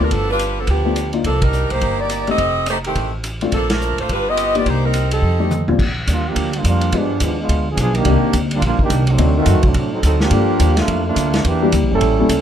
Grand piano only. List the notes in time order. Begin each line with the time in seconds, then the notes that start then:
0.00 A3 B3 D4 F4
0.85 A3 B3 D4 F4
1.13 A#3 D4 D#4 F4
2.27 A3 C4 D#4 G4
3.42 A3 C4 D4 F4
4.55 A#3 D4 D#4 G4
5.40 A3 C4 D#4 G4
5.68 A#2 G3 C4 D4 F4
6.93 G#3 B3 D4 F4 G4
8.06 A#3 C4 D4 D#4 G4
9.19 A3 C4 D4 D#4 F#4
10.32 G3 A#3 D4 F4 A4
11.62 G3 A#3 D4 E4 G4
12.19 G3 A#3 C#4 E4 A4